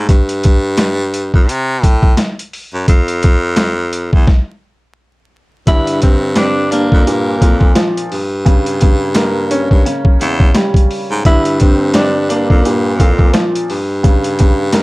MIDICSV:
0, 0, Header, 1, 5, 480
1, 0, Start_track
1, 0, Tempo, 697674
1, 61, Time_signature, 4, 2, 24, 8
1, 10201, End_track
2, 0, Start_track
2, 0, Title_t, "Tenor saxophone"
2, 0, Program_c, 0, 66
2, 3905, Note_on_c, 0, 64, 114
2, 4119, Note_off_c, 0, 64, 0
2, 4147, Note_on_c, 0, 60, 78
2, 4360, Note_off_c, 0, 60, 0
2, 4379, Note_on_c, 0, 62, 90
2, 4596, Note_off_c, 0, 62, 0
2, 4626, Note_on_c, 0, 58, 78
2, 5453, Note_off_c, 0, 58, 0
2, 7748, Note_on_c, 0, 64, 108
2, 7961, Note_off_c, 0, 64, 0
2, 7987, Note_on_c, 0, 60, 78
2, 8200, Note_off_c, 0, 60, 0
2, 8220, Note_on_c, 0, 62, 90
2, 8436, Note_off_c, 0, 62, 0
2, 8465, Note_on_c, 0, 58, 73
2, 9292, Note_off_c, 0, 58, 0
2, 10201, End_track
3, 0, Start_track
3, 0, Title_t, "Upright piano"
3, 0, Program_c, 1, 0
3, 0, Control_c, 1, 64, 127
3, 0, Note_on_c, 1, 55, 69
3, 68, Control_c, 1, 64, 0
3, 72, Note_off_c, 1, 55, 0
3, 3908, Note_on_c, 1, 50, 95
3, 4025, Control_c, 1, 64, 127
3, 4128, Note_off_c, 1, 50, 0
3, 4138, Note_on_c, 1, 50, 69
3, 4378, Note_on_c, 1, 60, 77
3, 4616, Note_on_c, 1, 62, 101
3, 4859, Note_off_c, 1, 60, 0
3, 4859, Note_off_c, 1, 62, 0
3, 4860, Note_off_c, 1, 50, 0
3, 4865, Note_on_c, 1, 46, 73
3, 4869, Control_c, 1, 64, 0
3, 4993, Control_c, 1, 64, 127
3, 5095, Note_off_c, 1, 46, 0
3, 5105, Note_on_c, 1, 46, 77
3, 5334, Note_on_c, 1, 53, 94
3, 5577, Note_off_c, 1, 53, 0
3, 5583, Note_off_c, 1, 46, 0
3, 5591, Control_c, 1, 64, 0
3, 5707, Control_c, 1, 64, 127
3, 5815, Note_on_c, 1, 49, 90
3, 6055, Note_off_c, 1, 49, 0
3, 6066, Note_on_c, 1, 49, 75
3, 6303, Note_on_c, 1, 58, 85
3, 6542, Note_on_c, 1, 61, 100
3, 6771, Note_off_c, 1, 49, 0
3, 6781, Note_on_c, 1, 49, 75
3, 7017, Note_off_c, 1, 49, 0
3, 7027, Note_on_c, 1, 49, 68
3, 7263, Note_on_c, 1, 55, 86
3, 7502, Note_off_c, 1, 58, 0
3, 7741, Note_off_c, 1, 61, 0
3, 7742, Note_off_c, 1, 55, 0
3, 7744, Note_off_c, 1, 49, 0
3, 7748, Note_on_c, 1, 50, 97
3, 7750, Control_c, 1, 64, 0
3, 7862, Control_c, 1, 64, 127
3, 7967, Note_off_c, 1, 50, 0
3, 7978, Note_on_c, 1, 50, 71
3, 8218, Note_on_c, 1, 60, 76
3, 8456, Note_on_c, 1, 62, 102
3, 8699, Note_off_c, 1, 50, 0
3, 8699, Note_off_c, 1, 60, 0
3, 8699, Note_off_c, 1, 62, 0
3, 8705, Note_on_c, 1, 46, 76
3, 8709, Control_c, 1, 64, 0
3, 8846, Control_c, 1, 64, 127
3, 8935, Note_off_c, 1, 46, 0
3, 8945, Note_on_c, 1, 46, 81
3, 9173, Note_on_c, 1, 53, 94
3, 9417, Note_off_c, 1, 53, 0
3, 9423, Note_off_c, 1, 46, 0
3, 9431, Control_c, 1, 64, 0
3, 9529, Control_c, 1, 64, 127
3, 9655, Note_on_c, 1, 49, 88
3, 9895, Note_off_c, 1, 49, 0
3, 9905, Note_on_c, 1, 49, 75
3, 10142, Note_on_c, 1, 58, 82
3, 10201, Note_off_c, 1, 49, 0
3, 10201, Note_off_c, 1, 58, 0
3, 10201, End_track
4, 0, Start_track
4, 0, Title_t, "Baritone saxophone"
4, 0, Program_c, 2, 67
4, 64, Note_on_c, 2, 43, 113
4, 892, Note_off_c, 2, 43, 0
4, 923, Note_on_c, 2, 41, 92
4, 1026, Note_on_c, 2, 48, 102
4, 1036, Note_off_c, 2, 41, 0
4, 1265, Note_on_c, 2, 45, 98
4, 1275, Note_off_c, 2, 48, 0
4, 1482, Note_off_c, 2, 45, 0
4, 1882, Note_on_c, 2, 42, 87
4, 1974, Note_off_c, 2, 42, 0
4, 1983, Note_on_c, 2, 41, 112
4, 2812, Note_off_c, 2, 41, 0
4, 2842, Note_on_c, 2, 40, 84
4, 2934, Note_off_c, 2, 40, 0
4, 3904, Note_on_c, 2, 43, 104
4, 4732, Note_off_c, 2, 43, 0
4, 4763, Note_on_c, 2, 41, 101
4, 4865, Note_on_c, 2, 43, 105
4, 4875, Note_off_c, 2, 41, 0
4, 5105, Note_on_c, 2, 41, 95
4, 5115, Note_off_c, 2, 43, 0
4, 5322, Note_off_c, 2, 41, 0
4, 5586, Note_on_c, 2, 43, 102
4, 6653, Note_off_c, 2, 43, 0
4, 6683, Note_on_c, 2, 43, 92
4, 6774, Note_off_c, 2, 43, 0
4, 7026, Note_on_c, 2, 40, 98
4, 7243, Note_off_c, 2, 40, 0
4, 7643, Note_on_c, 2, 44, 92
4, 7734, Note_off_c, 2, 44, 0
4, 7744, Note_on_c, 2, 43, 108
4, 8572, Note_off_c, 2, 43, 0
4, 8603, Note_on_c, 2, 41, 99
4, 8706, Note_on_c, 2, 43, 110
4, 8716, Note_off_c, 2, 41, 0
4, 8945, Note_on_c, 2, 41, 100
4, 8955, Note_off_c, 2, 43, 0
4, 9162, Note_off_c, 2, 41, 0
4, 9425, Note_on_c, 2, 43, 107
4, 10201, Note_off_c, 2, 43, 0
4, 10201, End_track
5, 0, Start_track
5, 0, Title_t, "Drums"
5, 61, Note_on_c, 9, 36, 117
5, 61, Note_on_c, 9, 42, 86
5, 130, Note_off_c, 9, 36, 0
5, 130, Note_off_c, 9, 42, 0
5, 200, Note_on_c, 9, 42, 61
5, 269, Note_off_c, 9, 42, 0
5, 300, Note_on_c, 9, 42, 64
5, 310, Note_on_c, 9, 36, 107
5, 369, Note_off_c, 9, 42, 0
5, 379, Note_off_c, 9, 36, 0
5, 533, Note_on_c, 9, 42, 107
5, 534, Note_on_c, 9, 40, 91
5, 540, Note_on_c, 9, 38, 113
5, 602, Note_off_c, 9, 42, 0
5, 603, Note_off_c, 9, 40, 0
5, 609, Note_off_c, 9, 38, 0
5, 782, Note_on_c, 9, 42, 70
5, 851, Note_off_c, 9, 42, 0
5, 920, Note_on_c, 9, 36, 93
5, 989, Note_off_c, 9, 36, 0
5, 1025, Note_on_c, 9, 42, 88
5, 1094, Note_off_c, 9, 42, 0
5, 1262, Note_on_c, 9, 36, 96
5, 1264, Note_on_c, 9, 42, 74
5, 1331, Note_off_c, 9, 36, 0
5, 1333, Note_off_c, 9, 42, 0
5, 1394, Note_on_c, 9, 36, 102
5, 1463, Note_off_c, 9, 36, 0
5, 1495, Note_on_c, 9, 40, 87
5, 1495, Note_on_c, 9, 42, 97
5, 1501, Note_on_c, 9, 38, 106
5, 1564, Note_off_c, 9, 40, 0
5, 1564, Note_off_c, 9, 42, 0
5, 1570, Note_off_c, 9, 38, 0
5, 1646, Note_on_c, 9, 42, 54
5, 1715, Note_off_c, 9, 42, 0
5, 1743, Note_on_c, 9, 46, 56
5, 1812, Note_off_c, 9, 46, 0
5, 1981, Note_on_c, 9, 36, 117
5, 1981, Note_on_c, 9, 42, 84
5, 2050, Note_off_c, 9, 36, 0
5, 2050, Note_off_c, 9, 42, 0
5, 2120, Note_on_c, 9, 42, 61
5, 2188, Note_off_c, 9, 42, 0
5, 2219, Note_on_c, 9, 42, 63
5, 2230, Note_on_c, 9, 36, 102
5, 2288, Note_off_c, 9, 42, 0
5, 2299, Note_off_c, 9, 36, 0
5, 2452, Note_on_c, 9, 42, 106
5, 2454, Note_on_c, 9, 40, 89
5, 2459, Note_on_c, 9, 38, 114
5, 2521, Note_off_c, 9, 42, 0
5, 2523, Note_off_c, 9, 40, 0
5, 2528, Note_off_c, 9, 38, 0
5, 2702, Note_on_c, 9, 42, 67
5, 2771, Note_off_c, 9, 42, 0
5, 2840, Note_on_c, 9, 36, 92
5, 2909, Note_off_c, 9, 36, 0
5, 2941, Note_on_c, 9, 36, 107
5, 2941, Note_on_c, 9, 38, 90
5, 3010, Note_off_c, 9, 36, 0
5, 3010, Note_off_c, 9, 38, 0
5, 3901, Note_on_c, 9, 36, 120
5, 3901, Note_on_c, 9, 42, 84
5, 3970, Note_off_c, 9, 36, 0
5, 3970, Note_off_c, 9, 42, 0
5, 4040, Note_on_c, 9, 42, 63
5, 4109, Note_off_c, 9, 42, 0
5, 4140, Note_on_c, 9, 42, 69
5, 4151, Note_on_c, 9, 36, 105
5, 4209, Note_off_c, 9, 42, 0
5, 4219, Note_off_c, 9, 36, 0
5, 4373, Note_on_c, 9, 42, 104
5, 4374, Note_on_c, 9, 40, 94
5, 4380, Note_on_c, 9, 38, 116
5, 4442, Note_off_c, 9, 42, 0
5, 4443, Note_off_c, 9, 40, 0
5, 4449, Note_off_c, 9, 38, 0
5, 4622, Note_on_c, 9, 42, 70
5, 4691, Note_off_c, 9, 42, 0
5, 4760, Note_on_c, 9, 36, 95
5, 4829, Note_off_c, 9, 36, 0
5, 4866, Note_on_c, 9, 42, 88
5, 4935, Note_off_c, 9, 42, 0
5, 5103, Note_on_c, 9, 36, 95
5, 5104, Note_on_c, 9, 42, 77
5, 5171, Note_off_c, 9, 36, 0
5, 5172, Note_off_c, 9, 42, 0
5, 5234, Note_on_c, 9, 36, 99
5, 5303, Note_off_c, 9, 36, 0
5, 5335, Note_on_c, 9, 40, 85
5, 5335, Note_on_c, 9, 42, 100
5, 5341, Note_on_c, 9, 38, 110
5, 5404, Note_off_c, 9, 40, 0
5, 5404, Note_off_c, 9, 42, 0
5, 5410, Note_off_c, 9, 38, 0
5, 5486, Note_on_c, 9, 42, 57
5, 5555, Note_off_c, 9, 42, 0
5, 5584, Note_on_c, 9, 46, 58
5, 5653, Note_off_c, 9, 46, 0
5, 5821, Note_on_c, 9, 36, 118
5, 5822, Note_on_c, 9, 42, 87
5, 5890, Note_off_c, 9, 36, 0
5, 5890, Note_off_c, 9, 42, 0
5, 5960, Note_on_c, 9, 42, 61
5, 6029, Note_off_c, 9, 42, 0
5, 6060, Note_on_c, 9, 42, 65
5, 6071, Note_on_c, 9, 36, 106
5, 6129, Note_off_c, 9, 42, 0
5, 6139, Note_off_c, 9, 36, 0
5, 6293, Note_on_c, 9, 42, 107
5, 6294, Note_on_c, 9, 40, 92
5, 6300, Note_on_c, 9, 38, 112
5, 6361, Note_off_c, 9, 42, 0
5, 6363, Note_off_c, 9, 40, 0
5, 6369, Note_off_c, 9, 38, 0
5, 6542, Note_on_c, 9, 42, 68
5, 6611, Note_off_c, 9, 42, 0
5, 6680, Note_on_c, 9, 36, 95
5, 6749, Note_off_c, 9, 36, 0
5, 6780, Note_on_c, 9, 38, 37
5, 6786, Note_on_c, 9, 42, 89
5, 6849, Note_off_c, 9, 38, 0
5, 6854, Note_off_c, 9, 42, 0
5, 6913, Note_on_c, 9, 36, 96
5, 6982, Note_off_c, 9, 36, 0
5, 7024, Note_on_c, 9, 42, 73
5, 7093, Note_off_c, 9, 42, 0
5, 7154, Note_on_c, 9, 36, 101
5, 7223, Note_off_c, 9, 36, 0
5, 7255, Note_on_c, 9, 40, 90
5, 7255, Note_on_c, 9, 42, 99
5, 7261, Note_on_c, 9, 38, 111
5, 7324, Note_off_c, 9, 40, 0
5, 7324, Note_off_c, 9, 42, 0
5, 7329, Note_off_c, 9, 38, 0
5, 7390, Note_on_c, 9, 36, 101
5, 7406, Note_on_c, 9, 42, 58
5, 7459, Note_off_c, 9, 36, 0
5, 7475, Note_off_c, 9, 42, 0
5, 7503, Note_on_c, 9, 46, 56
5, 7572, Note_off_c, 9, 46, 0
5, 7741, Note_on_c, 9, 36, 115
5, 7741, Note_on_c, 9, 42, 87
5, 7810, Note_off_c, 9, 36, 0
5, 7810, Note_off_c, 9, 42, 0
5, 7880, Note_on_c, 9, 42, 61
5, 7949, Note_off_c, 9, 42, 0
5, 7979, Note_on_c, 9, 42, 64
5, 7990, Note_on_c, 9, 36, 103
5, 8048, Note_off_c, 9, 42, 0
5, 8059, Note_off_c, 9, 36, 0
5, 8213, Note_on_c, 9, 42, 110
5, 8214, Note_on_c, 9, 40, 92
5, 8220, Note_on_c, 9, 38, 111
5, 8282, Note_off_c, 9, 42, 0
5, 8283, Note_off_c, 9, 40, 0
5, 8289, Note_off_c, 9, 38, 0
5, 8462, Note_on_c, 9, 42, 69
5, 8531, Note_off_c, 9, 42, 0
5, 8600, Note_on_c, 9, 36, 94
5, 8669, Note_off_c, 9, 36, 0
5, 8706, Note_on_c, 9, 42, 89
5, 8775, Note_off_c, 9, 42, 0
5, 8942, Note_on_c, 9, 36, 96
5, 8944, Note_on_c, 9, 42, 74
5, 9011, Note_off_c, 9, 36, 0
5, 9012, Note_off_c, 9, 42, 0
5, 9074, Note_on_c, 9, 36, 101
5, 9143, Note_off_c, 9, 36, 0
5, 9175, Note_on_c, 9, 40, 91
5, 9175, Note_on_c, 9, 42, 97
5, 9181, Note_on_c, 9, 38, 111
5, 9244, Note_off_c, 9, 40, 0
5, 9244, Note_off_c, 9, 42, 0
5, 9249, Note_off_c, 9, 38, 0
5, 9325, Note_on_c, 9, 42, 55
5, 9394, Note_off_c, 9, 42, 0
5, 9423, Note_on_c, 9, 46, 57
5, 9492, Note_off_c, 9, 46, 0
5, 9660, Note_on_c, 9, 42, 89
5, 9661, Note_on_c, 9, 36, 119
5, 9729, Note_off_c, 9, 42, 0
5, 9730, Note_off_c, 9, 36, 0
5, 9799, Note_on_c, 9, 42, 63
5, 9868, Note_off_c, 9, 42, 0
5, 9899, Note_on_c, 9, 42, 65
5, 9910, Note_on_c, 9, 36, 105
5, 9968, Note_off_c, 9, 42, 0
5, 9979, Note_off_c, 9, 36, 0
5, 10131, Note_on_c, 9, 42, 107
5, 10133, Note_on_c, 9, 40, 93
5, 10139, Note_on_c, 9, 38, 117
5, 10200, Note_off_c, 9, 42, 0
5, 10201, Note_off_c, 9, 38, 0
5, 10201, Note_off_c, 9, 40, 0
5, 10201, End_track
0, 0, End_of_file